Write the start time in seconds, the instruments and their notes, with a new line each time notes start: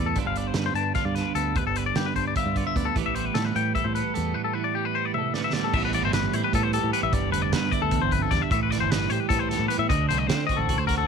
Already playing: fingered electric bass E2, clean electric guitar A2 E3 G3 B3
0.06 clean electric guitar A4
0.16 fingered electric bass G1, clean electric guitar G2 D3 B3 D4 F4, kick, closed hi-hat
0.25 fingered electric bass G1, clean electric guitar F5
0.36 clean electric guitar D3 D5, closed hi-hat
0.47 clean electric guitar C5
0.54 fingered electric bass G2, clean electric guitar B3 B4, snare, closed hi-hat
0.66 clean electric guitar C5
0.74 fingered electric bass G2, clean electric guitar D4 A5, closed hi-hat
0.95 clean electric guitar F4 F5, kick, snare, closed hi-hat
1.05 fingered electric bass G2, clean electric guitar D5
1.15 clean electric guitar D4 B4, snare, closed hi-hat
1.35 fingered electric bass D2, clean electric guitar B3 A4, closed hi-hat
1.56 clean electric guitar G2 B4, kick, closed hi-hat
1.67 fingered electric bass G1, clean electric guitar A4
1.76 clean electric guitar D3 B4, closed hi-hat
1.86 clean electric guitar D5
1.96 fingered electric bass G2, clean electric guitar G4, snare, closed hi-hat
2.00 clean electric guitar B3
2.06 clean electric guitar B4
2.16 fingered electric bass G2, clean electric guitar D4 C5, kick, closed hi-hat
2.28 clean electric guitar D5
2.36 clean electric guitar F4 E5, kick, closed hi-hat
2.46 fingered electric bass G2
2.56 clean electric guitar B3 D5, kick, closed hi-hat
2.67 clean electric guitar D4 E5
2.76 fingered electric bass D2, clean electric guitar B3 D5, kick, closed hi-hat
2.85 clean electric guitar A4
2.96 fingered electric bass A1, clean electric guitar A2 E3 G3 B3 G4, kick, closed hi-hat
3.06 fingered electric bass A1, clean electric guitar E5
3.15 clean electric guitar E3 C5, closed hi-hat
3.25 clean electric guitar B4
3.34 fingered electric bass A2, clean electric guitar G3 A4, snare, closed hi-hat
3.45 clean electric guitar B4
3.55 fingered electric bass A2, clean electric guitar B3 G5, closed hi-hat
3.75 clean electric guitar A4 E5, kick, closed hi-hat
3.84 fingered electric bass A2, clean electric guitar C5
3.95 clean electric guitar B3 B4, closed hi-hat
4.14 fingered electric bass E2, clean electric guitar G3 A4, closed hi-hat
4.34 clean electric guitar A2 B4
4.44 clean electric guitar A4
4.53 clean electric guitar E3 B4
4.64 clean electric guitar D5
4.75 clean electric guitar G3 G4
4.85 clean electric guitar B4
4.95 clean electric guitar B3 C5
5.05 clean electric guitar D5
5.14 clean electric guitar E5, high tom
5.18 clean electric guitar A4
5.34 clean electric guitar B3 D5, snare
5.44 clean electric guitar E5
5.53 clean electric guitar G3 D5, snare
5.64 clean electric guitar A4
5.73 fingered electric bass A1, clean electric guitar A2 E5, kick, crash
5.85 clean electric guitar B4
5.93 clean electric guitar E3 D5, closed hi-hat
6.03 fingered electric bass G1, clean electric guitar C5
6.13 clean electric guitar G3 B4, snare, closed hi-hat
6.33 fingered electric bass A2, clean electric guitar E4 C5, closed hi-hat
6.44 clean electric guitar G4 B4
6.53 fingered electric bass A2, clean electric guitar B3 A4, kick, closed hi-hat
6.63 clean electric guitar C5
6.73 clean electric guitar G4 A4, closed hi-hat
6.83 fingered electric bass A2
6.93 clean electric guitar B3 B4, closed hi-hat
7.03 fingered electric bass A1, clean electric guitar E5
7.12 fingered electric bass G1, clean electric guitar G2 D5, kick, closed hi-hat
7.32 fingered electric bass F1, clean electric guitar D3 B4, closed hi-hat
7.42 clean electric guitar D5
7.52 fingered electric bass G2, clean electric guitar B3 B4, snare, closed hi-hat
7.71 clean electric guitar E4 D5, kick, closed hi-hat
7.82 fingered electric bass D2, clean electric guitar A4
7.91 clean electric guitar E2, kick, closed hi-hat
8.02 fingered electric bass G1, clean electric guitar C5
8.11 clean electric guitar F2 B4, kick, closed hi-hat
8.22 clean electric guitar A4
8.31 fingered electric bass E2, clean electric guitar G2 D5, kick, snare, closed hi-hat
8.42 clean electric guitar E5
8.51 fingered electric bass A1, clean electric guitar A2 E5, kick, closed hi-hat
8.63 clean electric guitar B4
8.71 clean electric guitar E3 D5, snare, closed hi-hat
8.80 fingered electric bass G1, clean electric guitar C5
8.91 clean electric guitar G3 B4, snare, closed hi-hat
9.10 fingered electric bass A2, clean electric guitar G4 C5, closed hi-hat
9.20 clean electric guitar B4
9.29 fingered electric bass A2, clean electric guitar B3 A4, kick, closed hi-hat
9.39 clean electric guitar C5
9.49 clean electric guitar A4, snare, closed hi-hat
9.53 clean electric guitar G4
9.59 fingered electric bass A2
9.68 clean electric guitar B3 B4, closed hi-hat
9.79 fingered electric bass A2, clean electric guitar E5
9.89 fingered electric bass D2, clean electric guitar D3 D#5, kick, closed hi-hat
10.09 fingered electric bass C2, clean electric guitar A3 C5, closed hi-hat
10.18 clean electric guitar D#5
10.27 fingered electric bass D3, clean electric guitar C4 C5, snare, closed hi-hat
10.47 clean electric guitar D#5, kick, closed hi-hat
10.51 clean electric guitar F#4
10.57 fingered electric bass A1, clean electric guitar A4
10.69 clean electric guitar F#4, kick, closed hi-hat
10.78 fingered electric bass D2, clean electric guitar C5
10.87 clean electric guitar F#4 A#4, kick, snare, closed hi-hat
10.98 clean electric guitar A4